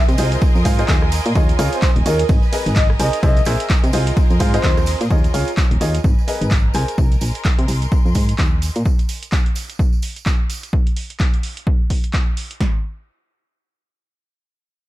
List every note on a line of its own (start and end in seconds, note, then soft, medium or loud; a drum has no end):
0.00 2.29 A#4 medium
0.00 5.12 D#5 medium
0.00 8.86 D#5 medium
0.00 8.85 G#5 medium
0.00 2.29 C6 medium
0.00 5.12 D#6 medium
0.09 0.16 C3 loud
0.09 closed hi-hat medium
0.09 tambourine soft
0.18 0.37 C2 loud
0.18 0.63 F4 medium
0.18 0.63 G#4 medium
0.18 0.27 C5 medium
0.18 0.63 C5 medium
0.18 0.63 D#5 medium
0.18 open hi-hat loud
0.18 ride medium
0.18 tambourine medium
0.32 0.38 C5 medium
0.32 closed hi-hat medium
0.32 tambourine soft
0.42 kick loud
0.42 ride medium
0.42 tambourine soft
0.55 0.65 F2 medium
0.55 tambourine soft
0.65 0.84 G#2 medium
0.65 0.77 F4 medium
0.65 0.77 G#4 medium
0.65 0.77 C5 medium
0.65 0.77 F5 loud
0.65 kick medium
0.65 open hi-hat loud
0.65 ride medium
0.65 tambourine medium
0.79 0.87 F4 loud
0.79 0.87 G#4 medium
0.79 0.87 C5 medium
0.79 0.87 D#5 loud
0.79 closed hi-hat medium
0.79 tambourine soft
0.88 1.20 D#2 medium
0.88 1.03 F4 medium
0.88 1.03 G#4 medium
0.88 1.03 C5 medium
0.88 1.03 D#5 medium
0.88 kick loud
0.88 clap loud
0.88 ride medium
0.88 tambourine medium
1.02 cross-stick medium
1.12 open hi-hat loud
1.12 ride medium
1.12 tambourine medium
1.26 1.33 A#2 loud
1.26 closed hi-hat medium
1.26 tambourine soft
1.35 1.54 D#2 medium
1.35 1.57 F4 medium
1.35 1.57 G#4 medium
1.35 1.57 C#5 medium
1.35 1.57 D#5 loud
1.35 kick loud
1.35 ride medium
1.35 tambourine soft
1.49 closed hi-hat medium
1.49 tambourine soft
1.59 1.69 C#2 medium
1.59 1.74 F4 medium
1.59 1.74 G#4 medium
1.59 1.74 C#5 medium
1.59 1.74 F5 loud
1.59 cross-stick medium
1.59 open hi-hat loud
1.59 ride medium
1.59 tambourine medium
1.73 1.90 C5 loud
1.73 closed hi-hat medium
1.73 tambourine soft
1.82 kick loud
1.82 clap loud
1.82 ride medium
1.82 tambourine medium
1.96 2.03 D#1 loud
1.96 closed hi-hat medium
2.06 2.24 D#2 loud
2.06 2.21 F4 medium
2.06 2.21 G#4 medium
2.06 2.25 A#4 loud
2.06 2.21 C#5 medium
2.06 2.21 D#5 loud
2.06 open hi-hat loud
2.06 ride medium
2.06 tambourine medium
2.19 closed hi-hat medium
2.19 tambourine soft
2.29 2.39 G#1 loud
2.29 3.00 B4 medium
2.29 kick loud
2.29 ride medium
2.29 tambourine medium
2.43 tambourine soft
2.53 2.74 G#4 medium
2.53 2.74 A#4 medium
2.53 2.74 B4 medium
2.53 2.74 D#5 medium
2.53 open hi-hat loud
2.53 ride medium
2.53 tambourine medium
2.62 3.46 A#5 medium
2.66 2.96 G#1 loud
2.66 closed hi-hat medium
2.66 tambourine soft
2.76 2.87 D#5 loud
2.76 kick loud
2.76 clap loud
2.76 ride medium
2.76 tambourine medium
2.90 cross-stick medium
2.99 3.10 C2 loud
2.99 3.21 G#4 medium
2.99 3.21 A#4 medium
2.99 6.04 A#4 medium
2.99 3.21 C5 medium
2.99 3.19 D#5 loud
2.99 3.21 G#5 loud
2.99 open hi-hat loud
2.99 ride medium
2.99 tambourine loud
3.13 closed hi-hat medium
3.13 tambourine soft
3.23 3.41 C2 loud
3.23 3.38 G#4 loud
3.23 3.38 A#4 medium
3.23 3.38 C5 medium
3.23 3.42 D#5 loud
3.23 3.38 E5 loud
3.23 kick loud
3.23 ride medium
3.23 tambourine medium
3.37 closed hi-hat medium
3.37 tambourine soft
3.45 3.57 A#1 medium
3.45 3.68 G#4 loud
3.45 3.68 A#4 medium
3.45 3.68 C5 medium
3.45 3.68 E5 loud
3.45 cross-stick medium
3.45 clap soft
3.45 open hi-hat loud
3.45 ride medium
3.45 tambourine medium
3.53 6.04 C6 medium
3.60 closed hi-hat medium
3.60 tambourine soft
3.70 kick loud
3.70 clap loud
3.70 ride medium
3.70 tambourine medium
3.84 3.91 C3 loud
3.84 closed hi-hat medium
3.84 tambourine soft
3.93 4.12 C2 loud
3.93 4.38 F4 medium
3.93 4.38 G#4 medium
3.93 4.38 C5 medium
3.93 4.38 D#5 medium
3.93 open hi-hat loud
3.93 ride medium
3.93 tambourine medium
4.07 closed hi-hat medium
4.07 tambourine soft
4.17 kick loud
4.17 ride medium
4.17 tambourine soft
4.30 4.40 F2 medium
4.30 closed hi-hat soft
4.30 tambourine soft
4.40 4.59 G#2 medium
4.40 4.52 F4 medium
4.40 4.52 G#4 medium
4.40 4.52 C5 medium
4.40 4.52 F5 loud
4.40 kick medium
4.40 open hi-hat loud
4.40 ride medium
4.40 tambourine medium
4.54 4.62 F4 loud
4.54 4.62 G#4 medium
4.54 5.01 C5 loud
4.54 4.62 C5 medium
4.54 4.62 D#5 loud
4.54 closed hi-hat medium
4.54 tambourine soft
4.63 4.95 D#2 medium
4.63 4.78 G#4 medium
4.63 4.78 C5 medium
4.63 4.78 D#5 medium
4.63 kick loud
4.63 clap loud
4.63 ride medium
4.63 tambourine soft
4.77 cross-stick medium
4.77 closed hi-hat soft
4.77 tambourine soft
4.86 open hi-hat loud
4.86 ride medium
4.86 tambourine medium
5.01 5.08 A#2 loud
5.01 closed hi-hat medium
5.01 tambourine soft
5.10 5.29 D#2 loud
5.10 5.32 F4 medium
5.10 5.32 G#4 medium
5.10 5.32 C#5 medium
5.10 5.32 D#5 medium
5.10 kick loud
5.10 tambourine medium
5.24 closed hi-hat soft
5.24 tambourine soft
5.34 5.44 C#2 medium
5.34 5.49 F4 medium
5.34 5.49 G#4 medium
5.34 5.49 C#5 medium
5.34 5.49 F5 loud
5.34 open hi-hat loud
5.34 tambourine medium
5.48 closed hi-hat medium
5.48 tambourine soft
5.57 kick loud
5.57 clap loud
5.57 tambourine medium
5.71 5.78 D#1 loud
5.71 closed hi-hat medium
5.81 5.99 D#2 loud
5.81 5.96 F4 medium
5.81 5.96 G#4 medium
5.81 5.96 C#5 medium
5.81 5.96 D#5 medium
5.81 open hi-hat loud
5.81 tambourine medium
5.94 closed hi-hat medium
5.94 tambourine soft
6.04 6.14 G#1 loud
6.04 6.75 B4 medium
6.04 kick loud
6.04 tambourine medium
6.19 tambourine soft
6.28 6.49 G#4 medium
6.28 6.49 A#4 medium
6.28 6.49 B4 medium
6.28 6.49 D#5 medium
6.28 open hi-hat loud
6.28 tambourine medium
6.37 7.21 A#5 medium
6.41 6.71 G#1 loud
6.41 closed hi-hat medium
6.41 tambourine soft
6.51 kick loud
6.51 clap loud
6.51 tambourine medium
6.74 6.85 C2 loud
6.74 6.96 G#4 medium
6.74 6.96 A#4 medium
6.74 8.86 A#4 medium
6.74 6.96 C5 medium
6.74 6.96 G#5 medium
6.74 open hi-hat loud
6.74 tambourine medium
6.88 closed hi-hat medium
6.88 tambourine soft
6.98 7.16 C2 loud
6.98 kick loud
6.98 tambourine medium
7.11 closed hi-hat medium
7.11 tambourine soft
7.21 7.32 A#1 medium
7.21 open hi-hat loud
7.21 tambourine loud
7.28 8.86 C6 medium
7.35 closed hi-hat medium
7.35 tambourine soft
7.45 kick loud
7.45 clap loud
7.45 tambourine medium
7.59 7.66 C3 loud
7.59 closed hi-hat medium
7.68 7.87 C2 loud
7.68 open hi-hat loud
7.68 tambourine medium
7.82 closed hi-hat medium
7.82 tambourine soft
7.92 kick loud
7.92 tambourine soft
8.06 8.15 F2 medium
8.06 tambourine soft
8.15 8.34 G#2 medium
8.15 kick medium
8.15 open hi-hat loud
8.15 tambourine medium
8.29 closed hi-hat medium
8.29 tambourine soft
8.38 8.70 D#2 medium
8.38 kick loud
8.38 clap loud
8.38 tambourine soft
8.62 open hi-hat loud
8.62 tambourine medium
8.76 8.83 A#2 loud
8.76 closed hi-hat medium
8.76 tambourine soft
8.85 kick loud
8.85 tambourine medium
8.99 closed hi-hat soft
8.99 tambourine soft
9.09 open hi-hat loud
9.09 tambourine medium
9.23 closed hi-hat medium
9.23 tambourine soft
9.32 kick loud
9.32 clap loud
9.32 tambourine medium
9.46 closed hi-hat medium
9.55 open hi-hat loud
9.55 tambourine medium
9.70 closed hi-hat medium
9.70 tambourine soft
9.79 kick loud
9.79 tambourine medium
9.93 tambourine soft
10.02 open hi-hat loud
10.02 tambourine medium
10.16 closed hi-hat medium
10.16 tambourine soft
10.26 kick loud
10.26 clap loud
10.26 tambourine medium
10.50 open hi-hat loud
10.50 tambourine medium
10.63 closed hi-hat medium
10.63 tambourine soft
10.73 kick loud
10.87 closed hi-hat soft
10.96 open hi-hat loud
11.10 closed hi-hat medium
11.20 kick loud
11.20 clap loud
11.34 closed hi-hat medium
11.43 open hi-hat loud
11.57 closed hi-hat medium
11.67 kick loud
11.90 kick medium
11.90 open hi-hat loud
12.04 closed hi-hat medium
12.13 kick loud
12.13 clap loud
12.37 open hi-hat loud
12.51 closed hi-hat medium
12.61 kick loud
12.61 snare medium